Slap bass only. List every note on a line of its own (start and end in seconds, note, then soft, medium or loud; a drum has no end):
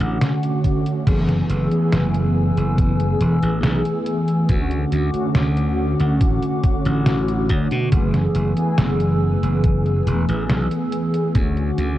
0.00 0.17 A1 medium
1.07 1.41 F#1 medium
1.50 1.67 F#1 medium
1.92 2.50 F#1 loud
2.57 3.14 F#1 medium
3.21 3.39 E1 medium
3.43 3.60 A1 medium
3.64 3.81 B1 loud
4.50 4.84 D2 medium
4.92 5.10 D2 medium
5.14 muted slap bass stroke soft
5.35 5.93 D2 loud
6.00 6.21 D2 medium
6.21 6.38 A1 medium
6.86 7.49 A1 loud
7.49 7.67 D2 loud
7.72 7.88 B2 medium
7.92 8.27 F#1 loud
8.35 8.53 F#1 medium
8.78 9.36 F#1 loud
9.43 10.00 F#1 medium
10.07 10.24 E1 loud
10.28 10.45 A1 medium
10.49 10.67 B1 loud
11.35 11.70 D2 medium
11.78 11.96 D2 medium